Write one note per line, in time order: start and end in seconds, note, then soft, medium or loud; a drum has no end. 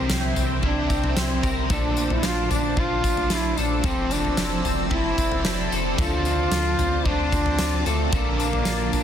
0.00 0.61 C3 medium
0.00 1.69 C3 medium
0.00 0.62 E3 medium
0.00 0.62 G3 medium
0.00 0.34 C4 medium
0.00 0.35 C4 medium
0.00 0.63 C4 medium
0.00 0.63 E4 medium
0.00 0.65 A#4 medium
0.00 1.43 A#4 medium
0.00 3.81 C5 medium
0.00 1.68 E5 medium
0.00 1.68 G5 medium
0.00 1.66 C6 medium
0.10 0.33 C2 medium
0.10 0.62 E4 medium
0.10 snare loud
0.10 tambourine loud
0.36 0.60 C2 loud
0.36 0.88 C4 medium
0.36 floor tom medium
0.36 tambourine medium
0.62 0.87 C2 loud
0.62 0.89 C3 medium
0.62 0.90 E3 medium
0.62 0.90 G3 medium
0.62 0.90 C4 medium
0.62 1.15 E4 medium
0.62 0.90 E4 medium
0.62 0.88 A#4 medium
0.62 kick medium
0.62 floor tom medium
0.66 1.21 D4 loud
0.89 1.14 C2 loud
0.89 1.75 C4 medium
0.89 1.44 C4 soft
0.89 1.43 E4 medium
0.89 1.42 A#4 soft
0.89 kick medium
0.89 tambourine medium
0.93 1.45 G3 soft
1.04 floor tom medium
1.16 1.40 C2 loud
1.16 1.58 C4 loud
1.16 1.75 E4 medium
1.16 snare loud
1.16 tambourine loud
1.43 1.67 C2 loud
1.43 1.71 G3 soft
1.43 1.71 C4 medium
1.43 1.71 E4 medium
1.43 1.70 A#4 medium
1.43 kick medium
1.43 tambourine medium
1.68 2.17 A#1 loud
1.68 2.75 A#2 medium
1.68 3.84 A#2 medium
1.68 2.76 D3 medium
1.68 2.77 A3 medium
1.68 3.57 A4 medium
1.68 9.03 D5 medium
1.68 3.82 A5 medium
1.68 3.82 D6 medium
1.68 kick loud
1.68 floor tom loud
1.68 tambourine medium
1.72 2.15 D4 loud
1.72 2.77 D4 medium
1.72 2.78 F4 medium
1.72 2.79 A4 loud
1.97 2.49 D4 medium
1.97 tambourine medium
2.10 2.28 E4 loud
2.10 floor tom medium
2.23 2.48 A#1 loud
2.23 2.77 F4 medium
2.23 2.52 F4 loud
2.23 snare loud
2.23 tambourine loud
2.50 2.74 A#1 loud
2.50 3.03 D4 medium
2.50 2.81 D4 loud
2.50 floor tom medium
2.50 tambourine medium
2.76 3.01 A#1 loud
2.76 3.04 A#2 medium
2.76 3.04 D3 medium
2.76 3.04 A3 medium
2.76 3.05 D4 medium
2.76 3.30 F4 medium
2.76 3.03 F4 medium
2.76 3.35 F4 loud
2.76 3.02 A4 medium
2.76 kick medium
2.76 floor tom medium
3.03 3.28 A#1 loud
3.03 3.83 A3 soft
3.03 3.90 D4 medium
3.03 3.84 D4 medium
3.03 3.86 F4 medium
3.03 3.88 A4 medium
3.03 kick medium
3.03 tambourine medium
3.17 floor tom medium
3.30 3.54 A#1 loud
3.30 3.61 E4 loud
3.30 4.37 F4 medium
3.30 snare loud
3.30 tambourine medium
3.57 3.81 A#1 loud
3.57 3.87 D4 loud
3.57 3.84 A4 medium
3.57 tambourine medium
3.82 4.31 F1 loud
3.82 4.90 F3 medium
3.82 5.98 F3 medium
3.82 4.91 A3 medium
3.82 4.91 C4 loud
3.82 4.14 C4 loud
3.82 5.72 A4 medium
3.82 5.96 C5 medium
3.82 5.97 A5 medium
3.82 5.97 E6 medium
3.82 kick loud
3.82 floor tom loud
3.82 tambourine medium
3.86 4.91 E4 loud
3.86 4.93 A4 loud
4.11 4.64 C4 medium
4.11 4.65 D4 loud
4.11 tambourine medium
4.25 floor tom medium
4.37 4.62 F1 loud
4.37 4.90 E4 medium
4.37 snare loud
4.37 tambourine loud
4.65 4.88 F1 medium
4.65 5.18 C4 medium
4.65 floor tom medium
4.65 tambourine medium
4.90 5.15 F1 loud
4.90 5.18 F3 medium
4.90 5.18 A3 medium
4.90 5.18 C4 medium
4.90 5.44 E4 medium
4.90 5.18 E4 medium
4.90 5.69 E4 loud
4.90 5.16 A4 medium
4.90 kick medium
4.90 floor tom medium
5.17 5.42 F1 loud
5.17 6.25 C4 medium
5.17 5.74 C4 soft
5.17 5.71 E4 medium
5.17 5.70 A4 medium
5.17 kick medium
5.17 tambourine medium
5.32 floor tom medium
5.45 5.68 F1 loud
5.45 6.04 E4 medium
5.45 snare loud
5.45 tambourine medium
5.70 5.95 F1 loud
5.70 5.99 E4 medium
5.70 5.98 A4 medium
5.70 tambourine medium
5.75 5.98 C4 medium
5.96 6.46 D2 loud
5.96 7.04 D3 medium
5.96 9.03 D3 medium
5.96 7.05 A3 medium
5.96 7.05 C4 medium
5.96 7.86 A4 medium
5.96 8.11 C5 medium
5.96 8.11 A5 medium
5.96 9.03 D6 medium
5.96 kick loud
5.96 floor tom loud
5.96 tambourine medium
6.00 7.09 F4 loud
6.00 7.06 F4 medium
6.00 7.07 A4 medium
6.25 6.78 C4 medium
6.25 tambourine medium
6.51 6.75 D2 loud
6.51 7.06 F4 medium
6.51 snare loud
6.51 tambourine loud
6.78 7.02 D2 loud
6.78 7.31 C4 medium
6.78 floor tom medium
6.78 tambourine medium
7.04 7.29 D2 loud
7.04 7.32 D3 medium
7.04 7.32 A3 medium
7.04 7.33 C4 medium
7.04 7.89 D4 loud
7.04 7.59 F4 medium
7.04 7.32 F4 medium
7.04 7.30 A4 medium
7.04 kick medium
7.04 floor tom medium
7.31 7.56 D2 loud
7.31 8.18 C4 medium
7.31 7.87 F4 soft
7.31 7.84 A4 medium
7.31 kick medium
7.31 tambourine medium
7.36 7.88 C4 medium
7.46 floor tom medium
7.59 7.83 D2 loud
7.59 8.67 F4 medium
7.59 snare loud
7.59 tambourine loud
7.85 8.10 D2 loud
7.85 8.15 A3 medium
7.85 8.13 F4 medium
7.85 8.12 A4 medium
7.85 8.14 A4 medium
7.85 tambourine medium
7.89 8.14 C4 soft
8.11 8.60 A#1 loud
8.11 9.03 A#2 medium
8.11 9.03 D3 medium
8.11 9.03 A#3 medium
8.11 9.03 A#3 loud
8.11 9.03 D4 medium
8.11 9.03 A4 medium
8.11 9.03 A5 medium
8.11 kick loud
8.11 floor tom loud
8.11 tambourine medium
8.16 9.03 F4 loud
8.16 9.03 A4 loud
8.40 8.93 D4 medium
8.40 tambourine medium
8.53 floor tom medium
8.65 8.90 A#1 medium
8.65 9.03 F4 medium
8.65 snare loud
8.65 tambourine loud
8.93 9.03 A#1 loud
8.93 9.03 D4 medium
8.93 floor tom medium
8.93 tambourine medium